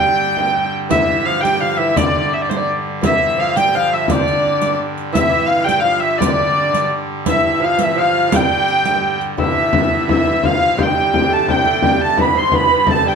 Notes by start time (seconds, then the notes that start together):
Already playing: G2 D3 G3 G5
0.02 frame drum
0.37 frame drum
0.55 frame drum
0.89 G2 D3 E3 E5, riq, frame drum
1.26 F3 F5
1.41 G3 G5, frame drum
1.45 riq
1.61 F3 F5
1.77 E3 E5
1.96 D3 D5, riq, frame drum
2.33 E5
2.42 D5
2.49 C5, riq, frame drum
2.57 D5
3.02 E3 E5, riq, frame drum
3.06 E5
3.37 F3 F5
3.56 G3 G5, riq, frame drum
3.74 F3 F5
3.92 E5
4.08 D3 D5, riq, frame drum
4.15 C5
4.24 D5
4.28 riq, frame drum
4.45 frame drum
4.62 D5, riq, frame drum
4.98 riq
5.13 G2 D3 E3 E5, riq, frame drum
5.29 E3
5.46 F5
5.52 F5
5.64 G3 G5, frame drum
5.69 G5, riq
5.80 F3 F5
5.84 F5
6.00 E5
6.18 D3 D5, riq, frame drum
6.73 D3, riq, frame drum
7.26 E3 E5, riq, frame drum
7.44 E5
7.60 F3 F5
7.64 F5
7.78 E3 E5, riq, frame drum
7.83 E5
7.96 F3 F5
8.32 G3 G5, riq, frame drum
8.36 G5
8.51 frame drum
8.68 riq
8.85 riq, frame drum
9.03 frame drum
9.21 riq, frame drum
9.36 G2 D3 E3 E5, frame drum
9.56 frame drum
9.73 frame drum
10.08 E3 E5, frame drum
10.25 E3
10.43 F3 F5, frame drum
10.61 frame drum
10.77 G3 G5, frame drum
10.83 G5
11.12 G5, frame drum
11.29 A3 A5
11.47 G3 G5, frame drum
11.65 A3, frame drum
11.82 G3 G5, frame drum
11.99 A3 A5
12.17 B3 B5, frame drum
12.22 B5
12.35 C4 C6
12.52 B3 B5, frame drum
12.71 B3
12.87 A3 A5, frame drum
12.91 A5
13.05 G3 G5